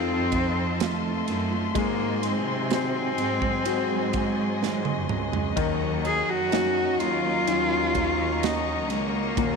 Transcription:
0.00 1.24 F2 loud
0.00 0.11 D#3 soft
0.00 1.71 F3 medium
0.00 0.84 C4 loud
0.00 1.78 D#4 soft
0.00 1.71 F4 medium
0.00 1.77 F4 soft
0.00 1.77 A4 medium
0.00 1.71 D#5 medium
0.00 1.71 A5 medium
0.00 5.52 C6 medium
0.08 0.31 D#3 soft
0.08 0.32 A3 soft
0.08 0.33 C4 medium
0.08 0.32 F4 medium
0.32 0.80 D#3 medium
0.32 0.80 A3 medium
0.32 0.80 C4 medium
0.32 0.81 F4 medium
0.32 kick medium
0.32 ride medium
0.80 1.28 F2 medium
0.80 1.28 C3 medium
0.80 1.25 D#3 medium
0.80 1.27 A3 medium
0.80 1.80 A3 medium
0.80 1.28 C4 medium
0.80 1.29 F4 medium
0.80 snare loud
0.80 ride medium
1.27 1.72 F#2 medium
1.27 1.51 D#3 medium
1.27 1.52 A3 medium
1.27 1.51 C4 medium
1.27 1.50 F4 medium
1.27 ride medium
1.51 1.74 D#3 soft
1.51 1.76 A3 medium
1.51 1.76 C4 medium
1.51 1.75 F4 medium
1.75 2.69 G#2 medium
1.75 2.47 G#2 loud
1.75 2.71 D#3 medium
1.75 9.56 F#3 medium
1.75 2.71 F#3 medium
1.75 5.52 G#3 medium
1.75 2.71 G#3 medium
1.75 2.27 A#3 medium
1.75 2.71 C4 medium
1.75 2.72 G#4 medium
1.75 9.56 D#5 medium
1.75 5.53 G#5 medium
1.75 kick loud
1.75 ride medium
2.23 5.10 C4 loud
2.23 ride medium
2.47 3.15 C3 medium
2.70 3.18 G#2 medium
2.70 3.19 D#3 medium
2.70 3.16 F#3 medium
2.70 3.18 G#3 medium
2.70 3.19 C4 medium
2.70 3.63 F#4 soft
2.70 3.63 G#4 soft
2.70 3.19 G#4 medium
2.70 3.63 C5 medium
2.70 snare loud
2.70 ride medium
3.18 3.63 G#2 medium
3.18 3.42 F#3 medium
3.18 3.43 G#3 medium
3.18 3.42 C4 medium
3.18 3.40 G#4 medium
3.18 ride medium
3.42 3.91 F#3 soft
3.42 3.90 G#3 medium
3.42 3.90 C4 medium
3.42 3.88 G#4 medium
3.42 kick medium
3.65 5.09 G#2 loud
3.65 4.58 F#4 soft
3.65 4.58 G#4 soft
3.65 4.59 C5 medium
3.65 ride medium
3.89 4.12 F#3 soft
3.89 4.13 G#3 medium
3.89 4.14 C4 medium
3.89 4.13 G#4 medium
4.13 4.61 F#3 medium
4.13 4.62 G#3 medium
4.13 4.62 C4 medium
4.13 4.63 G#4 medium
4.13 kick medium
4.13 ride medium
4.61 5.09 G#2 medium
4.61 5.09 D#3 medium
4.61 5.07 F#3 medium
4.61 5.09 G#3 medium
4.61 5.10 C4 medium
4.61 5.10 G#4 medium
4.61 snare medium
4.85 high tom medium
5.08 5.54 C#2 medium
5.08 5.32 F#3 medium
5.08 5.33 G#3 medium
5.08 5.32 C4 medium
5.08 5.31 G#4 medium
5.08 mid tom medium
5.32 5.56 F#3 soft
5.32 5.57 G#3 soft
5.32 5.57 C4 medium
5.32 5.56 G#4 medium
5.32 floor tom medium
5.56 6.24 D#2 loud
5.56 9.33 D#3 medium
5.56 6.51 D#3 medium
5.56 6.51 A#3 medium
5.56 6.52 C#4 medium
5.56 6.53 F#4 medium
5.56 9.56 A#5 medium
5.56 9.56 C#6 medium
5.56 kick loud
5.56 ride medium
6.05 6.31 G#4 loud
6.05 ride medium
6.29 6.96 F#2 medium
6.29 7.02 F#4 loud
6.52 6.98 D#3 medium
6.52 7.45 F#3 soft
6.52 6.99 A#3 medium
6.52 7.44 C#4 soft
6.52 7.00 C#4 medium
6.52 7.45 D#4 soft
6.52 7.00 F#4 medium
6.52 snare loud
6.52 ride medium
6.99 7.44 D#2 medium
6.99 7.23 D#3 medium
6.99 7.24 A#3 medium
6.99 7.24 C#4 medium
6.99 8.45 F4 loud
6.99 7.25 F#4 medium
6.99 ride medium
7.25 7.72 A#3 soft
7.25 7.71 C#4 soft
7.47 8.90 D#2 loud
7.47 8.40 F#3 medium
7.47 8.40 C#4 soft
7.47 8.40 D#4 soft
7.47 ride medium
7.70 7.94 A#3 soft
7.70 7.95 C#4 soft
7.70 7.94 F#4 soft
7.94 8.41 D#3 medium
7.94 8.42 A#3 medium
7.94 8.42 C#4 medium
7.94 kick medium
7.94 ride medium
8.42 8.88 D#3 medium
8.42 8.89 A#3 medium
8.42 8.90 C#4 medium
8.42 8.92 D#4 medium
8.42 8.91 F#4 medium
8.42 snare loud
8.42 ride medium
8.89 9.34 C#2 medium
8.89 9.13 D#3 medium
8.89 9.14 A#3 medium
8.89 9.56 A#3 medium
8.89 9.13 C#4 medium
8.89 9.12 F#4 medium
8.89 ride medium
9.13 9.37 A#3 soft
9.13 9.37 C#4 soft
9.13 9.37 F#4 medium
9.37 9.56 D#2 loud
9.37 9.56 A#2 medium
9.37 9.56 D#3 medium
9.37 9.56 A#3 medium
9.37 9.56 C#4 medium
9.37 9.56 F#4 medium
9.37 kick loud
9.37 ride medium

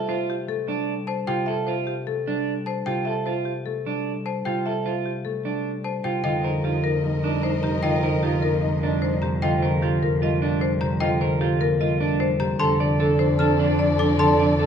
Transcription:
0.00 1.26 C3 medium
0.00 0.66 G3 medium
0.00 0.46 A3 medium
0.00 0.14 A4 medium
0.00 0.14 E5 medium
0.09 0.34 F4 medium
0.09 0.34 C5 medium
0.30 0.55 G4 medium
0.47 2.06 A3 medium
0.47 0.74 A4 medium
0.67 2.26 G3 medium
0.67 0.94 D4 medium
1.07 1.34 C5 medium
1.07 1.33 A5 medium
1.27 2.85 C3 medium
1.27 1.53 F4 medium
1.27 1.53 G4 medium
1.27 1.53 G5 medium
1.46 1.73 A4 medium
1.46 1.73 E5 medium
1.67 1.93 F4 medium
1.67 1.93 C5 medium
1.87 2.13 G4 medium
2.07 3.65 A3 medium
2.07 2.33 A4 medium
2.27 3.85 G3 medium
2.27 2.53 D4 medium
2.66 2.93 C5 medium
2.66 2.92 A5 medium
2.86 4.45 C3 medium
2.86 3.12 F4 medium
2.86 3.12 G4 medium
2.86 3.12 G5 medium
3.05 3.32 A4 soft
3.05 3.32 E5 medium
3.26 3.52 F4 medium
3.26 3.52 C5 medium
3.45 3.72 G4 medium
3.66 5.24 A3 medium
3.66 3.92 A4 medium
3.86 5.44 G3 medium
3.86 4.12 D4 medium
4.26 4.51 C5 medium
4.26 4.51 A5 medium
4.45 6.03 C3 soft
4.45 4.72 F4 medium
4.45 4.71 G4 medium
4.45 4.71 G5 medium
4.66 4.92 A4 soft
4.66 4.91 E5 medium
4.86 5.11 F4 medium
4.86 5.11 C5 medium
5.06 5.31 G4 soft
5.25 6.26 A3 medium
5.25 5.51 A4 medium
5.45 7.02 G3 medium
5.45 5.71 D4 medium
5.84 6.10 C5 medium
5.84 6.10 A5 medium
6.04 6.26 C3 medium
6.04 6.23 F4 medium
6.04 6.30 G4 medium
6.04 6.23 G5 medium
6.24 12.48 F2 medium
6.24 7.82 D3 medium
6.24 6.38 D#4 soft
6.24 6.50 F4 medium
6.24 9.19 A#4 medium
6.24 6.50 D#5 medium
6.24 9.19 D#5 medium
6.24 6.50 G5 medium
6.43 6.59 D#4 soft
6.43 6.70 A#4 medium
6.43 6.70 C5 medium
6.64 6.78 D#4 soft
6.64 6.90 F4 medium
6.64 6.90 G4 medium
6.84 8.42 A#3 medium
6.84 6.98 D#4 medium
6.84 7.10 A#4 medium
7.03 8.62 G3 medium
7.03 7.17 D#4 medium
7.03 7.30 D#5 medium
7.24 7.50 D4 medium
7.24 7.38 D#4 medium
7.43 7.57 D#4 medium
7.43 7.69 C5 medium
7.63 9.21 C3 medium
7.63 7.77 D#4 medium
7.63 7.89 G4 medium
7.63 7.89 A#5 medium
7.83 9.42 D3 medium
7.83 7.97 D#4 medium
7.83 8.09 F4 medium
7.83 8.09 D#5 medium
7.83 8.09 G5 medium
8.02 8.16 D#4 medium
8.02 8.29 A#4 medium
8.02 8.29 C5 medium
8.23 8.37 D#4 medium
8.23 8.49 F4 medium
8.23 8.49 G4 medium
8.42 10.01 A#3 medium
8.42 8.56 D#4 medium
8.42 8.68 A#4 medium
8.61 10.21 G3 medium
8.61 8.76 D#4 soft
8.61 8.88 D#5 medium
8.81 9.09 D4 medium
8.81 8.96 D#4 soft
9.01 9.15 D#4 soft
9.01 9.28 C5 medium
9.22 10.80 C3 medium
9.22 9.48 G4 medium
9.22 9.48 A#5 medium
9.42 10.99 D3 medium
9.42 9.68 F4 medium
9.42 9.68 D#5 medium
9.42 9.68 G5 medium
9.62 9.88 A#4 medium
9.62 9.88 C5 medium
9.82 10.08 F4 medium
9.82 10.08 G4 medium
10.02 11.59 A#3 medium
10.02 10.28 A#4 medium
10.22 11.79 G3 medium
10.22 10.42 F4 medium
10.22 10.48 D#5 medium
10.42 10.67 D4 medium
10.61 10.87 C5 medium
10.81 12.40 C3 medium
10.81 11.07 G4 medium
10.81 11.07 A#5 medium
11.00 12.59 D3 medium
11.00 11.27 F4 medium
11.00 11.27 D#5 medium
11.00 11.27 G5 medium
11.21 11.47 A#4 medium
11.21 11.47 C5 medium
11.41 11.67 F4 medium
11.41 11.67 G4 medium
11.61 12.62 A#3 medium
11.61 11.87 A#4 medium
11.80 12.62 G3 medium
11.80 12.00 F4 medium
11.80 12.06 D#5 medium
12.01 12.26 D4 loud
12.20 12.46 C5 loud
12.40 12.62 C3 medium
12.40 12.66 G4 medium
12.40 12.66 A#5 medium
12.60 14.66 F2 medium
12.60 14.18 D3 medium
12.60 12.74 D4 soft
12.60 12.80 A4 medium
12.60 14.66 A4 medium
12.60 14.66 D5 medium
12.60 12.86 A5 medium
12.60 12.86 C6 loud
12.80 12.94 D4 medium
12.80 13.06 D5 medium
12.99 13.13 D4 medium
12.99 13.26 A4 medium
13.19 14.66 D4 medium
13.19 13.34 D4 medium
13.19 13.45 C5 medium
13.39 14.66 C4 medium
13.39 13.53 D4 medium
13.39 13.65 A4 medium
13.39 13.65 A5 medium
13.39 13.65 F6 medium
13.60 13.73 D4 medium
13.60 13.85 D4 medium
13.79 13.94 D4 medium
13.79 14.05 D5 medium
13.99 14.66 C3 medium
13.99 14.14 D4 medium
13.99 14.25 A4 medium
13.99 14.25 D6 medium
14.19 14.66 D3 medium
14.19 14.33 D4 medium
14.19 14.45 A4 medium
14.19 14.45 A5 medium
14.19 14.45 C6 medium
14.39 14.53 D4 medium
14.39 14.65 D5 medium
14.59 14.66 D4 medium
14.59 14.66 A4 medium

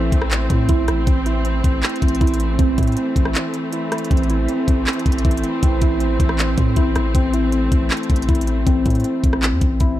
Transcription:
0.00 0.11 A1 loud
0.00 1.04 E3 medium
0.00 1.04 A3 medium
0.00 1.06 C4 medium
0.00 4.07 C4 medium
0.00 0.68 E4 medium
0.12 0.49 A1 loud
0.12 kick loud
0.12 closed hi-hat medium
0.22 cross-stick loud
0.31 clap loud
0.31 closed hi-hat medium
0.50 0.68 A2 loud
0.50 kick medium
0.50 closed hi-hat medium
0.69 0.87 A1 loud
0.69 0.87 E4 medium
0.69 kick loud
0.69 closed hi-hat medium
0.88 1.06 A1 loud
0.88 1.07 E4 medium
0.88 cross-stick loud
0.88 closed hi-hat medium
1.07 1.62 A1 loud
1.07 10.00 E3 medium
1.07 7.11 A3 medium
1.07 1.44 C4 medium
1.07 kick loud
1.07 closed hi-hat medium
1.26 2.20 E4 medium
1.26 closed hi-hat medium
1.45 2.58 C4 medium
1.45 closed hi-hat medium
1.64 1.82 A1 loud
1.64 kick loud
1.64 closed hi-hat medium
1.83 clap loud
1.83 closed hi-hat soft
1.89 closed hi-hat soft
1.96 closed hi-hat medium
2.02 2.20 A1 loud
2.02 kick medium
2.02 closed hi-hat medium
2.08 closed hi-hat medium
2.15 closed hi-hat medium
2.21 2.57 A1 loud
2.21 2.39 E4 medium
2.21 kick loud
2.21 closed hi-hat medium
2.27 closed hi-hat medium
2.34 closed hi-hat medium
2.40 2.77 E4 medium
2.40 closed hi-hat medium
2.59 2.77 A1 loud
2.59 2.96 C4 loud
2.59 kick loud
2.59 closed hi-hat medium
2.78 2.96 A2 loud
2.78 3.72 E4 medium
2.78 kick loud
2.78 closed hi-hat medium
2.83 closed hi-hat medium
2.87 closed hi-hat soft
2.92 closed hi-hat soft
2.97 4.10 C4 medium
2.97 closed hi-hat medium
3.16 3.35 A1 loud
3.16 kick loud
3.16 closed hi-hat medium
3.25 cross-stick loud
3.35 clap loud
3.35 closed hi-hat medium
3.54 closed hi-hat medium
3.73 3.91 E4 medium
3.73 closed hi-hat medium
3.92 4.11 E4 medium
3.92 cross-stick loud
3.92 closed hi-hat medium
3.98 closed hi-hat medium
4.04 closed hi-hat medium
4.11 4.47 A1 loud
4.11 4.48 C4 medium
4.11 10.00 C4 medium
4.11 kick loud
4.11 closed hi-hat medium
4.17 closed hi-hat soft
4.23 closed hi-hat soft
4.30 5.24 E4 medium
4.30 closed hi-hat medium
4.49 5.62 C4 medium
4.49 closed hi-hat medium
4.68 4.86 A1 loud
4.68 kick loud
4.68 closed hi-hat medium
4.87 clap loud
4.87 closed hi-hat soft
4.93 closed hi-hat soft
4.99 closed hi-hat medium
5.06 5.24 A1 loud
5.06 kick medium
5.06 closed hi-hat medium
5.12 closed hi-hat medium
5.18 closed hi-hat medium
5.25 5.43 A1 loud
5.25 5.43 E4 medium
5.25 kick loud
5.25 closed hi-hat soft
5.31 closed hi-hat medium
5.37 closed hi-hat medium
5.44 5.81 E4 medium
5.44 closed hi-hat medium
5.63 5.81 A1 loud
5.63 5.99 C4 loud
5.63 kick loud
5.63 closed hi-hat medium
5.82 6.18 A1 loud
5.82 6.76 E4 medium
5.82 kick loud
5.82 closed hi-hat medium
6.00 7.13 C4 medium
6.00 closed hi-hat medium
6.20 6.56 A1 loud
6.20 kick loud
6.20 closed hi-hat medium
6.29 cross-stick loud
6.39 clap loud
6.39 closed hi-hat medium
6.58 6.76 A2 loud
6.58 kick loud
6.58 closed hi-hat medium
6.76 6.95 A1 loud
6.76 6.94 E4 medium
6.76 kick loud
6.76 closed hi-hat medium
6.96 7.14 A1 loud
6.96 7.15 E4 medium
6.96 cross-stick medium
6.96 closed hi-hat medium
7.15 7.69 A1 loud
7.15 10.00 A3 medium
7.15 7.51 C4 medium
7.15 kick loud
7.15 closed hi-hat medium
7.33 8.27 E4 medium
7.33 closed hi-hat medium
7.52 8.65 C4 medium
7.52 closed hi-hat medium
7.72 7.90 A1 loud
7.72 kick loud
7.72 closed hi-hat medium
7.91 clap loud
7.91 closed hi-hat soft
7.97 closed hi-hat medium
8.03 closed hi-hat medium
8.10 8.28 A1 loud
8.10 kick loud
8.10 closed hi-hat medium
8.16 closed hi-hat medium
8.22 closed hi-hat medium
8.29 8.65 A1 loud
8.29 8.46 E4 medium
8.29 kick loud
8.29 closed hi-hat soft
8.35 closed hi-hat medium
8.41 closed hi-hat medium
8.47 8.84 E4 medium
8.47 closed hi-hat medium
8.67 8.85 A1 loud
8.67 9.03 C4 medium
8.67 kick loud
8.67 closed hi-hat medium
8.86 9.04 A2 loud
8.86 9.79 E4 medium
8.86 kick loud
8.86 closed hi-hat medium
8.90 closed hi-hat medium
8.95 closed hi-hat soft
9.00 closed hi-hat soft
9.04 10.00 C4 medium
9.04 closed hi-hat medium
9.24 9.54 A1 loud
9.24 kick loud
9.24 closed hi-hat medium
9.33 cross-stick loud
9.43 clap loud
9.43 closed hi-hat medium
9.52 9.61 E2 loud
9.61 9.80 A1 loud
9.61 kick loud
9.61 closed hi-hat medium
9.80 9.99 A1 loud
9.80 9.98 E4 medium
9.80 kick loud
9.80 closed hi-hat medium

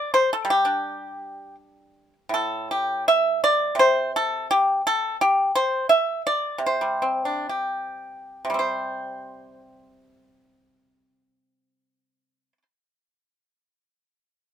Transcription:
0.00 0.11 D5 medium
0.14 0.29 C5 medium
0.33 0.48 A4 medium
0.45 2.29 G3 soft
0.50 1.55 G4 medium
0.65 2.13 D4 soft
2.29 3.75 A2 soft
2.34 2.67 A4 medium
2.71 3.04 G4 soft
3.08 3.40 E5 medium
3.44 3.75 D5 medium
3.75 5.84 C3 soft
3.79 4.10 C5 medium
4.16 4.46 A4 medium
4.51 4.80 G4 medium
4.87 5.16 A4 medium
5.21 5.50 G4 medium
5.55 5.85 C5 medium
5.89 6.21 E5 medium
6.27 6.60 D5 medium
6.58 8.43 C3 soft
6.66 7.25 C5 medium
6.81 8.49 G3 soft
7.02 8.53 C4 soft
7.25 7.49 D4 soft
7.49 8.58 G4 soft
8.45 12.52 C3 soft
8.50 12.57 G3 soft
8.54 12.62 C4 soft
8.59 12.63 C5 soft

